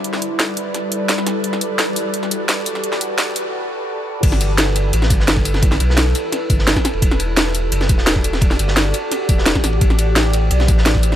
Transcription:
Already playing: G3 E4 A4 B4 D5
0.04 closed hi-hat
0.13 snare
0.22 closed hi-hat
0.39 snare, closed hi-hat
0.57 closed hi-hat
0.74 snare, closed hi-hat
0.92 closed hi-hat
1.09 snare, closed hi-hat
1.18 snare
1.26 E3 F#4 G4, snare, closed hi-hat
1.44 closed hi-hat
1.53 snare
1.61 closed hi-hat, tambourine
1.79 snare, closed hi-hat
1.96 closed hi-hat, tambourine
2.14 closed hi-hat
2.23 snare
2.31 closed hi-hat, tambourine
2.49 snare, closed hi-hat
2.66 closed hi-hat, tambourine
2.75 snare
2.84 closed hi-hat
2.92 snare
3.01 closed hi-hat, tambourine
3.18 snare, closed hi-hat
3.36 closed hi-hat, tambourine
4.23 G1 E4 A4 B4, kick, closed hi-hat, crash, ride
4.32 snare
4.41 closed hi-hat, ride, tambourine
4.58 snare, closed hi-hat, ride
4.76 closed hi-hat, ride, tambourine
4.93 A1, closed hi-hat, ride
5.02 snare
5.10 G1, kick, closed hi-hat, ride, tambourine
5.20 snare
5.28 snare, closed hi-hat, ride
5.37 kick
5.45 closed hi-hat, ride, tambourine
5.54 snare
5.62 kick, closed hi-hat, ride
5.72 snare
5.80 B1, closed hi-hat, ride, tambourine
5.90 snare
5.97 snare, closed hi-hat, ride
6.15 closed hi-hat, ride, tambourine
6.32 snare, closed hi-hat, ride
6.50 G1, kick, closed hi-hat, ride, tambourine
6.59 snare
6.67 snare, closed hi-hat, ride
6.76 kick, snare, ride
6.85 F#4 G4 D5, snare, closed hi-hat, ride, tambourine
6.93 E1, ride
7.02 E1, kick, closed hi-hat, ride
7.11 snare
7.19 closed hi-hat, ride, tambourine
7.36 snare, closed hi-hat, ride
7.55 closed hi-hat, ride, tambourine
7.72 F#1, closed hi-hat, ride
7.81 snare
7.89 E1, kick, closed hi-hat, ride, tambourine
7.98 snare
8.06 snare, closed hi-hat, ride
8.16 kick
8.24 closed hi-hat, ride, tambourine
8.33 snare
8.41 kick, closed hi-hat, ride
8.51 snare
8.59 G1, closed hi-hat, ride, tambourine
8.68 snare
8.76 snare, closed hi-hat, ride
8.94 closed hi-hat, ride, tambourine
9.11 snare, closed hi-hat, ride
9.29 E1, kick, closed hi-hat, ride, tambourine
9.38 snare
9.46 snare, closed hi-hat, ride
9.55 kick, snare, ride
9.64 A1 B4 C5, snare, closed hi-hat, ride, tambourine
9.73 ride
9.81 A1, kick, closed hi-hat, ride
9.90 snare
9.99 closed hi-hat, ride, tambourine
10.16 snare, closed hi-hat, ride
10.33 closed hi-hat, ride, tambourine
10.51 B1, closed hi-hat, ride
10.60 snare
10.68 A1, kick, closed hi-hat, ride, tambourine
10.78 snare
10.86 snare, closed hi-hat, ride
10.95 kick
11.03 closed hi-hat, ride, tambourine
11.12 snare

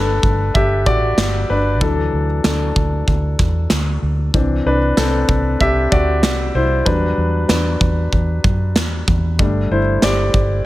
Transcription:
Already playing: G1 G3 A3 D4 A4 B4
0.23 G1, kick
0.54 G1 G4 E5, kick
0.86 A1 F#4 D5, kick
1.17 G1, snare, clap
1.50 G1 D4 B4
1.81 D2 E3 F#3 D4 A4, kick
2.13 D2
2.44 D2 D4 A4, snare, clap
2.76 D2, kick
3.08 D2, kick
3.39 E2, kick, snare
3.70 D2, snare, clap
4.02 D2
4.34 C2 E3 C4 D4, kick
4.65 C2 D4 B4
4.97 C2 C4 A4, snare, clap
5.29 C2, kick
5.61 C2 G4 E5, kick
5.92 D2 F#4 D5, kick
6.23 C2, snare, clap
6.55 C2 E4 C5
6.85 E2 F#3 G3 D4 B4, kick
7.17 E2
7.49 E2 D4 B4, snare, clap
7.81 E2, kick
8.12 E2, kick
8.44 F#2, kick
8.76 E2, snare, clap
9.08 E2, kick
9.39 G1 G3 A3 D4, kick
9.71 G1 E4 C5
10.02 G1 G4 D5, snare, clap
10.34 G1, kick

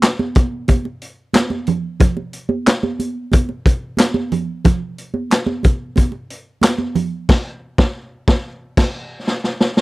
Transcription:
0.02 snare, clap, closed hi-hat, muted conga
0.19 muted conga, high conga
0.35 kick, closed hi-hat, high conga
0.68 kick, closed hi-hat, muted conga, high conga
0.85 muted conga
1.02 closed hi-hat
1.33 snare, clap, closed hi-hat, high conga
1.50 muted conga, high conga
1.67 closed hi-hat, low conga
2.00 kick, closed hi-hat, muted conga, low conga
2.17 muted conga
2.33 closed hi-hat
2.49 high conga
2.67 snare, clap, closed hi-hat, muted conga
2.83 muted conga, high conga
2.99 closed hi-hat, high conga
3.32 kick, closed hi-hat, high conga
3.49 muted conga
3.66 kick, closed hi-hat
3.97 snare, clap, closed hi-hat, high conga
4.14 muted conga, high conga
4.32 closed hi-hat, low conga
4.65 kick, closed hi-hat, muted conga, low conga
4.98 closed hi-hat
5.14 high conga
5.31 snare, clap, closed hi-hat, muted conga
5.46 high conga
5.63 kick, closed hi-hat, high conga
5.96 kick, closed hi-hat, muted conga, high conga
6.12 muted conga
6.30 closed hi-hat
6.61 snare, clap, closed hi-hat, high conga
6.78 high conga
6.95 closed hi-hat, low conga
7.29 kick, snare, crash
7.78 kick, snare
8.28 kick, snare
8.77 kick, snare, crash
9.27 snare
9.44 snare
9.61 snare
9.77 snare

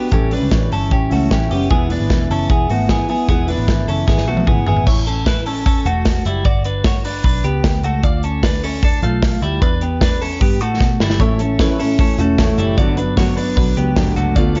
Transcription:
Already playing: B3 D4 F#4 G4
0.11 A1 A2 E3 G3 C#4 E4 G4, kick, closed hi-hat
0.31 G3 C#4 D4 E4 B4, open hi-hat
0.42 C#2
0.51 A1 E3 G3 C#4 E4, kick, snare, closed hi-hat
0.72 G1 C#4 A4, open hi-hat
0.91 A1 C#4 G4, kick, closed hi-hat
1.10 C#2 G3 A3 C#4 E4 F#4, open hi-hat
1.30 A1 E3 G3 C#4 E4 G4, kick, snare, closed hi-hat
1.50 F#1 G3 B3 C#4 E4 G4, open hi-hat
1.70 E1 E3 G#3 B3 E4 G#4, kick, closed hi-hat
1.89 G#3 B3 D4 E4 B4, open hi-hat
2.00 G#1
2.09 E1 E3 G#3 B3 E4, kick, snare, closed hi-hat
2.30 F#1 C#4 A4, open hi-hat
2.50 E1 B3 G#4, kick, closed hi-hat
2.69 G#1 G#3 A3 B3 E4 F#4, open hi-hat
2.88 E3 G#3 B3 E4 G#4, kick, snare, closed hi-hat
3.09 G#3 B3 E4 G#4, open hi-hat
3.29 E1 E3 G#3 B3 E4 G#4, kick, closed hi-hat
3.48 G#3 B3 D4 E4 B4, open hi-hat
3.58 A1
3.68 G#1 E3 G#3 B3 E4, kick, snare, closed hi-hat
3.88 F#1 C#4 A4, open hi-hat
4.08 G#1 B3 G#4, kick, snare
4.18 snare
4.27 B1 G#3 A3 B3 E4 F#4
4.37 high tom
4.47 G#1 E3 G#3 B3 E4 G#4, kick, mid tom
4.67 G#1 G#3 B3 E4 G#4, floor tom
4.76 floor tom
4.87 A1 E4 C#5, kick, crash
5.06 C#4 A4, hi-hat pedal, open hi-hat
5.26 E4 B4, kick, snare, hi-hat pedal, open hi-hat
5.46 C#4 A4, hi-hat pedal, open hi-hat
5.66 C#4 A4, kick, hi-hat pedal, open hi-hat
5.85 E1 A3 F#4, hi-hat pedal, open hi-hat
6.05 kick, snare, hi-hat pedal, open hi-hat
6.25 F#1 G3 E4, hi-hat pedal, open hi-hat
6.45 G1 F#4 D5, kick, hi-hat pedal, open hi-hat
6.64 D4 B4, hi-hat pedal, open hi-hat
6.84 F#4 C#5, kick, snare, hi-hat pedal, open hi-hat
7.04 D4 B4, hi-hat pedal, open hi-hat
7.24 B1 D4 B4, kick, hi-hat pedal, open hi-hat
7.44 C#2 B3 G4, hi-hat pedal, open hi-hat
7.64 D2, kick, snare, hi-hat pedal, open hi-hat
7.83 C#2 A3 F#4, hi-hat pedal, open hi-hat
8.04 D2 F4 D5, kick, hi-hat pedal, open hi-hat
8.23 C#4 A4, hi-hat pedal, open hi-hat
8.43 D4 B4, kick, snare, hi-hat pedal, open hi-hat
8.63 C#4 A4, hi-hat pedal, open hi-hat
8.83 D4 A4, kick, hi-hat pedal, open hi-hat
9.03 B1 A3 F4, hi-hat pedal, open hi-hat
9.22 kick, snare, hi-hat pedal, open hi-hat
9.42 D2 G3 E4, hi-hat pedal, open hi-hat
9.62 E2 D4 B4, kick, hi-hat pedal, open hi-hat
9.81 B3 G4, hi-hat pedal, open hi-hat
10.01 D4 B4, kick, snare, hi-hat pedal, open hi-hat
10.21 C#4 A4, hi-hat pedal, open hi-hat
10.41 G2 B3 G4, kick, hi-hat pedal, open hi-hat
10.60 A2 A3 F#4, hi-hat pedal, open hi-hat
10.81 B2, kick, snare
11.00 G1 G3 E4, snare
11.10 snare
11.19 A1 A2 E3 A3 C#4 E4 C#5, kick, hi-hat pedal, open hi-hat
11.39 A3 C#4 E4 A4, hi-hat pedal, open hi-hat
11.59 A2 E3 A3 C#4 E4 B4, kick, snare, hi-hat pedal, open hi-hat
11.78 A3 C#4 E4 A4, hi-hat pedal, open hi-hat
11.98 E3 A3 C#4 E4 A4, kick, hi-hat pedal, open hi-hat
12.18 E1 A3 C#4 E4 F#4, hi-hat pedal, open hi-hat
12.38 A2 E3 A3 C#4 E4, kick, snare, hi-hat pedal, open hi-hat
12.58 F#1 G3 E4, hi-hat pedal, open hi-hat
12.78 G1 G2 D3 F#3 B3 D4 F#4 D5, kick, hi-hat pedal, open hi-hat
12.97 F#3 B3 D4 B4, hi-hat pedal, open hi-hat
13.17 G2 D3 F#3 B3 D4 F#4 C#5, kick, snare, hi-hat pedal, open hi-hat
13.36 F#3 B3 D4 B4, hi-hat pedal, open hi-hat
13.56 B1 D3 F#3 B3 D4 B4, kick, hi-hat pedal, open hi-hat
13.75 C#2 F#3 B3 D4 G4, hi-hat pedal, open hi-hat
13.95 D2 G2 D3 F#3 B3 D4, kick, snare, hi-hat pedal, open hi-hat
14.16 C#2 A3 F#4, hi-hat pedal, open hi-hat
14.36 D2 D3 A3 B3 F4 D5, kick, hi-hat pedal, open hi-hat
14.55 C#4 F4 A4, hi-hat pedal, open hi-hat

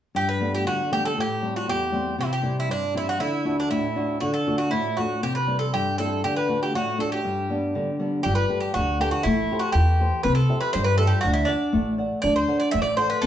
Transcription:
0.15 G2 G4
0.29 B4
0.40 G3 A3 B3
0.55 G4
0.65 D3 F#4
0.91 G3 A3 B3 G4
1.05 A4
1.17 A2 G4
1.42 G3 A3 C4
1.56 F#4
1.67 E2 G4
1.92 G3 A3 C4
2.18 C3 E4
2.33 G4
2.42 G3 C4 E4
2.60 E4
2.68 G2 D4
2.94 G3 C4 E4
3.09 F#4
3.20 D3 E4
3.45 D4 E4 F#4
3.60 D4
3.70 A2 E4
3.96 D4 E4 F#4
4.20 D3 F#4
4.34 A4
4.47 A3 D4 F#4
4.58 F#4
4.71 A2 E4
4.97 A3 D4 F#4
5.23 C3 G4
5.35 B4
5.47 G3 C4 E4
5.59 A4
5.74 G2 G4
5.98 G3 C4 E4 A4
6.24 D3 G4
6.36 B4
6.48 A3 D4 F#4
6.63 G4
6.74 A2 F#4
6.98 A3 D4 F#4 A4
7.12 G4
7.25 G2
7.50 G3 B3 D4
7.75 D3
7.99 G3 B3 D4
8.23 G1 G3 G4
8.35 B4
8.49 G4 A4 B4
8.60 G4
8.74 D2 D3 F#4
9.00 G4 A4 B4
9.11 F#4
9.23 A1 A3 E4
9.52 G4 A4 C5
9.59 F#4
9.72 E2 E3 G4
10.00 G4 A4 C5
10.23 C2 C4 B4
10.35 A4
10.49 G4 C5 E5
10.61 B4
10.73 G2 G3 C5
10.84 B4
10.98 G4 A4 C5 E5
11.07 G4
11.21 D2 D4 F#4
11.33 E4
11.45 D4 D5 E5 F#5
11.73 A1 A3
11.98 D5 E5 F#5
12.22 D2 D4 D5
12.36 C5
12.48 A4 D5 F#5
12.60 D5
12.71 A1 A3 E5
12.82 D5
12.97 A4 C5 D5 F#5
13.10 B4
13.22 C4 A4

